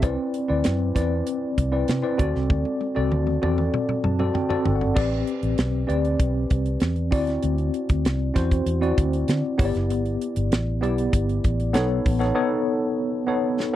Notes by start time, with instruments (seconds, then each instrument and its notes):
0.02 fingered electric bass C2, tine electric piano C4 E4 B4 D5, kick, closed hi-hat
0.34 closed hi-hat
0.48 fingered electric bass D2, tine electric piano C4 E4 B4 D5
0.64 fingered electric bass F#2, snare, closed hi-hat
0.95 fingered electric bass E2, tine electric piano C4 E4 B4 D5, kick, snare, closed hi-hat
1.27 closed hi-hat
1.58 fingered electric bass C2, kick, closed hi-hat
1.72 tine electric piano C4 E4 B4 D5
1.88 fingered electric bass C3, snare, closed hi-hat
2.02 tine electric piano C4 E4 B4 D5
2.17 fingered electric bass D2, tine electric piano C4 F#4 A4 D5, kick, closed hi-hat
2.35 fingered electric bass C2, snare
2.50 fingered electric bass D2, kick, high tom
2.65 high tom
2.81 high tom
2.95 fingered electric bass C2, tine electric piano C4 F#4 A4 D5, high tom
3.12 fingered electric bass D2, mid tom
3.27 mid tom
3.42 fingered electric bass E2, tine electric piano C4 F#4 A4 D5, mid tom
3.58 mid tom
3.74 mid tom
3.89 mid tom
4.04 fingered electric bass F#2, tine electric piano A5, mid tom
4.19 tine electric piano C4 F#4 A4 D5, mid tom
4.34 tine electric piano G5, floor tom
4.49 tine electric piano C4 F#4 A4 D5, floor tom
4.65 fingered electric bass G1, floor tom
4.75 tine electric piano F#5
4.81 floor tom
4.95 fingered electric bass A1, tine electric piano C4 G4 B4 D5, kick, crash
5.27 closed hi-hat
5.43 fingered electric bass A1, closed hi-hat
5.58 fingered electric bass B1, snare, closed hi-hat
5.87 fingered electric bass D2, tine electric piano C4 G4 B4 D5, closed hi-hat
6.05 closed hi-hat
6.20 fingered electric bass B1, kick, closed hi-hat
6.50 fingered electric bass C2, kick, closed hi-hat
6.66 closed hi-hat
6.80 fingered electric bass E2, snare, closed hi-hat
6.96 closed hi-hat
7.11 fingered electric bass D2, tine electric piano C4 E4 F#4 D5, kick, open hi-hat
7.27 snare, closed hi-hat
7.43 fingered electric bass D2, closed hi-hat
7.58 closed hi-hat
7.74 closed hi-hat
7.89 fingered electric bass D2, kick, closed hi-hat
8.05 fingered electric bass C2, snare, closed hi-hat
8.34 fingered electric bass E2, tine electric piano C4 E4 F#4 C5, kick, snare, closed hi-hat
8.51 kick, closed hi-hat
8.66 fingered electric bass E2, closed hi-hat
8.81 tine electric piano C4 E4 F#4 D5, closed hi-hat
8.98 fingered electric bass D2, kick, closed hi-hat
9.13 closed hi-hat
9.28 fingered electric bass D3, snare, closed hi-hat
9.58 fingered electric bass G1, tine electric piano B3 E4 G4 C#5, kick, open hi-hat
9.65 tine electric piano D5
9.75 fingered electric bass F#1, snare, closed hi-hat
9.90 fingered electric bass G1, closed hi-hat
10.06 closed hi-hat
10.21 closed hi-hat
10.36 fingered electric bass G1, closed hi-hat
10.52 fingered electric bass A1, snare, closed hi-hat
10.81 fingered electric bass B1, tine electric piano B3 E4 G4 D5, closed hi-hat
10.98 closed hi-hat
11.13 fingered electric bass G1, kick, closed hi-hat
11.29 closed hi-hat
11.44 fingered electric bass A1, kick, closed hi-hat
11.60 closed hi-hat
11.73 fingered electric bass B1, tine electric piano B3 D#4 A4 C#5, snare, closed hi-hat
12.06 fingered electric bass A1, kick, open hi-hat
12.19 tine electric piano B3 D#4 A4 C#5, snare, closed hi-hat
12.34 tine electric piano B3 D#4 A4 C#5
13.27 tine electric piano B3 D#4 A4 C#5
13.60 snare